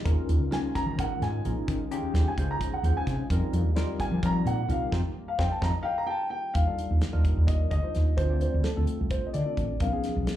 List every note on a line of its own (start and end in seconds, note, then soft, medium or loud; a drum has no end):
0.00 3.26 D#3 medium
0.04 0.15 D#2 medium
0.04 0.43 G#3 medium
0.04 3.28 G#3 medium
0.04 0.43 C#4 medium
0.04 3.27 C#4 medium
0.04 0.43 D#4 medium
0.04 0.44 F4 medium
0.04 6.52 F4 medium
0.04 0.44 A#4 medium
0.04 kick loud
0.04 closed hi-hat medium
0.29 0.40 D#2 medium
0.29 closed hi-hat medium
0.40 0.58 C#2 loud
0.51 0.90 G#3 medium
0.51 0.90 C#4 medium
0.51 0.90 D#4 medium
0.51 0.90 F4 medium
0.51 0.90 A#4 medium
0.51 0.75 G#5 medium
0.51 snare loud
0.51 closed hi-hat medium
0.75 0.98 A#5 loud
0.75 kick medium
0.75 snare soft
0.75 closed hi-hat medium
0.86 0.96 D#3 medium
0.98 1.17 D#3 medium
0.98 1.36 G#3 medium
0.98 1.36 C#4 medium
0.98 1.37 D#4 medium
0.98 1.37 F4 medium
0.98 1.37 A#4 medium
0.98 1.22 F#5 medium
0.98 kick loud
0.98 closed hi-hat medium
1.22 1.40 G#2 loud
1.22 1.45 G#5 medium
1.22 snare soft
1.22 closed hi-hat medium
1.45 1.54 A#1 medium
1.45 1.83 G#3 medium
1.45 1.83 C#4 medium
1.45 1.83 D#4 medium
1.45 1.83 F4 medium
1.45 1.83 A#4 medium
1.45 closed hi-hat medium
1.68 1.95 D#3 medium
1.68 kick loud
1.68 closed hi-hat medium
1.91 2.29 G#3 medium
1.91 2.29 C#4 medium
1.91 2.29 D#4 medium
1.91 2.30 F4 medium
1.91 2.30 G4 loud
1.91 closed hi-hat medium
2.03 muted fretless electric bass stroke soft
2.14 2.23 D#2 medium
2.14 snare loud
2.14 closed hi-hat medium
2.24 2.26 G5 medium
2.28 2.50 G#5 medium
2.38 2.56 C#2 medium
2.38 2.76 G#3 medium
2.38 2.76 C#4 medium
2.38 2.76 D#4 medium
2.38 2.76 F4 medium
2.38 2.77 C5 medium
2.38 kick medium
2.38 closed hi-hat medium
2.51 2.73 A#5 medium
2.61 kick loud
2.61 closed hi-hat medium
2.72 2.96 F#5 medium
2.72 muted fretless electric bass stroke soft
2.83 2.93 D#2 loud
2.83 3.22 G#3 medium
2.83 3.23 C#4 medium
2.83 3.23 D#4 medium
2.83 3.23 F4 medium
2.83 3.23 C5 medium
2.83 closed hi-hat medium
2.97 3.19 G#5 medium
3.07 3.16 C3 medium
3.07 kick medium
3.07 snare soft
3.07 closed hi-hat medium
3.19 muted fretless electric bass stroke soft
3.29 3.40 F2 medium
3.29 6.51 D#3 medium
3.29 6.52 G3 medium
3.29 3.69 G3 medium
3.29 6.51 A#3 medium
3.29 3.69 C4 medium
3.29 3.69 D#4 medium
3.29 3.69 F4 medium
3.29 3.69 A#4 loud
3.29 kick loud
3.29 closed hi-hat medium
3.53 3.65 F2 loud
3.53 closed hi-hat medium
3.65 3.83 D#2 loud
3.76 4.14 G3 loud
3.76 4.15 C4 medium
3.76 4.15 D#4 medium
3.76 4.15 F4 medium
3.76 4.15 A#4 loud
3.76 snare loud
3.76 closed hi-hat medium
4.00 4.23 G#5 medium
4.00 kick medium
4.00 snare soft
4.00 closed hi-hat medium
4.12 4.21 F3 medium
4.22 4.41 F3 medium
4.22 4.61 G3 medium
4.22 4.61 C4 medium
4.22 4.61 D#4 medium
4.22 4.61 F4 medium
4.22 4.61 A#4 medium
4.22 4.47 A#5 loud
4.22 kick loud
4.22 closed hi-hat medium
4.46 4.64 A#2 loud
4.46 4.69 F#5 medium
4.46 closed hi-hat medium
4.68 4.78 C2 loud
4.68 4.92 G3 medium
4.68 4.91 C4 medium
4.68 4.91 D#4 medium
4.68 4.91 F4 medium
4.68 4.92 A#4 medium
4.68 4.84 F5 medium
4.68 closed hi-hat medium
4.92 5.01 F2 medium
4.92 5.00 C4 medium
4.92 5.00 D#4 medium
4.92 5.00 F4 loud
4.92 kick loud
4.92 snare medium
5.28 5.39 F5 medium
5.39 5.48 F2 medium
5.39 5.46 C4 loud
5.39 5.46 D#4 loud
5.39 5.47 F4 loud
5.39 5.50 G5 medium
5.39 kick loud
5.39 snare medium
5.51 5.62 A5 medium
5.61 5.71 F2 medium
5.61 5.69 C4 loud
5.61 5.69 D#4 loud
5.61 5.69 F4 loud
5.61 5.74 A#5 loud
5.61 kick loud
5.61 snare medium
5.75 5.86 D#5 medium
5.83 6.08 F5 loud
5.83 5.96 G5 medium
5.98 6.09 A#5 loud
6.07 6.29 G5 loud
6.07 6.23 A5 medium
6.30 6.53 G5 loud
6.54 6.64 D#2 medium
6.54 6.65 G3 medium
6.54 6.65 D4 medium
6.54 6.65 D#4 medium
6.54 6.65 F4 medium
6.54 6.65 A#4 medium
6.54 7.50 F5 loud
6.54 kick loud
6.54 closed hi-hat medium
6.67 7.05 G3 medium
6.67 7.05 D4 medium
6.67 7.05 D#4 medium
6.67 7.05 F4 medium
6.67 7.05 A4 medium
6.78 muted fretless electric bass stroke soft
6.78 closed hi-hat medium
6.91 6.99 D#2 medium
7.01 snare loud
7.01 closed hi-hat medium
7.12 7.32 D#2 medium
7.12 7.70 G3 medium
7.12 7.71 D4 medium
7.12 7.71 D#4 medium
7.12 7.70 F4 medium
7.12 7.71 A#4 medium
7.25 kick medium
7.25 closed hi-hat medium
7.37 7.64 D#2 medium
7.47 7.69 D#5 medium
7.47 kick loud
7.47 closed hi-hat medium
7.71 7.80 D2 medium
7.71 8.19 D#5 medium
7.71 kick medium
7.71 closed hi-hat medium
7.83 8.12 G3 medium
7.83 8.12 D4 medium
7.83 8.12 D#4 medium
7.83 8.12 F4 medium
7.83 8.12 C5 medium
7.83 muted fretless electric bass stroke soft
7.95 8.18 D#2 medium
7.95 snare soft
7.95 closed hi-hat soft
8.17 8.45 D2 medium
8.17 8.28 A3 medium
8.17 8.28 C4 medium
8.17 8.28 D4 medium
8.17 8.28 F4 medium
8.17 8.40 C5 medium
8.17 8.28 C5 medium
8.17 kick loud
8.17 closed hi-hat medium
8.29 8.68 A3 medium
8.29 8.68 C4 medium
8.29 8.68 D4 medium
8.29 8.68 F4 medium
8.29 8.68 D5 medium
8.41 8.66 C5 medium
8.41 closed hi-hat medium
8.54 8.63 D2 medium
8.63 9.12 A4 medium
8.63 snare loud
8.63 closed hi-hat medium
8.76 8.86 D2 medium
8.76 9.34 A3 medium
8.76 9.34 C4 medium
8.76 9.34 D4 medium
8.76 9.34 F4 medium
8.76 9.34 A4 medium
8.87 closed hi-hat medium
9.01 9.18 C2 medium
9.10 9.28 C5 medium
9.10 kick loud
9.10 closed hi-hat medium
9.26 9.34 D#5 medium
9.33 9.44 D3 medium
9.33 9.77 D5 medium
9.33 closed hi-hat medium
9.45 9.75 A3 medium
9.45 9.75 C4 medium
9.45 9.75 D4 medium
9.45 9.75 F4 medium
9.45 9.75 A4 medium
9.57 9.67 A1 medium
9.57 kick medium
9.57 closed hi-hat medium
9.70 muted fretless electric bass stroke soft
9.80 9.90 B1 medium
9.80 9.91 F3 medium
9.80 9.91 B3 medium
9.80 9.91 C#4 medium
9.80 9.91 D#4 medium
9.80 9.91 A#4 medium
9.80 10.36 F5 medium
9.80 kick loud
9.80 closed hi-hat medium
9.92 10.31 F3 medium
9.92 10.31 B3 medium
9.92 10.31 C#4 medium
9.92 10.31 D#4 medium
9.92 10.31 G#4 medium
10.04 muted fretless electric bass stroke soft
10.04 snare soft
10.04 closed hi-hat medium
10.16 10.25 B1 medium
10.27 snare loud
10.27 closed hi-hat medium